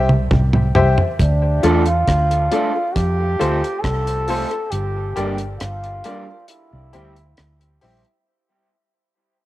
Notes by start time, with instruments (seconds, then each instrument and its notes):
Already playing: fingered electric bass C2
0.09 mid tom
0.31 fingered electric bass C2, kick, mid tom
0.53 mid tom
0.75 fingered electric bass C2, upright piano G4 C5 E5, floor tom
0.98 upright piano C5 E5, floor tom
1.19 fingered electric bass D2, trombone D4, kick, closed hi-hat
1.63 fingered electric bass E2, clean electric guitar A3 D4 F4 A4, upright piano F4 A4 D5, closed hi-hat
1.86 trombone F4, closed hi-hat
2.08 fingered electric bass D2, kick, cross-stick, closed hi-hat
2.31 closed hi-hat
2.51 clean electric guitar A3 D4 F4 A4, upright piano F4 A4 D5, closed hi-hat
2.75 upright piano A4 D5
2.95 fingered electric bass F2, trombone G4, kick, closed hi-hat
3.39 fingered electric bass D2, clean electric guitar A3 C4 F4 A4, upright piano F4 A4 C5, closed hi-hat
3.64 closed hi-hat
3.81 fingered electric bass C2, trombone A4, kick, cross-stick, closed hi-hat
4.07 closed hi-hat
4.28 clean electric guitar A3 C4 F4 A4, upright piano F4 A4 C5, open hi-hat
4.51 upright piano A4 C5, closed hi-hat
4.71 fingered electric bass G1, trombone G4, closed hi-hat
5.16 fingered electric bass G1, clean electric guitar G3 A#3 D4 G4, upright piano G4 A#4 D5, closed hi-hat
5.38 closed hi-hat
5.59 fingered electric bass G1, trombone F4, cross-stick, closed hi-hat
5.84 closed hi-hat
6.04 clean electric guitar G3 A#3 D4 G4, upright piano G4 A#4 D5, closed hi-hat
6.27 upright piano A#4 D5
6.48 trombone E4, closed hi-hat
6.73 fingered electric bass C2
6.93 fingered electric bass D2, clean electric guitar G3 C4 E4 G4, upright piano G4 C5 E5, closed hi-hat
7.16 closed hi-hat
7.37 fingered electric bass D2, cross-stick, closed hi-hat
7.61 closed hi-hat
7.81 fingered electric bass A#1, clean electric guitar G3 C4 E4 G4, upright piano G4 C5 E5, open hi-hat
8.04 upright piano C5 E5, closed hi-hat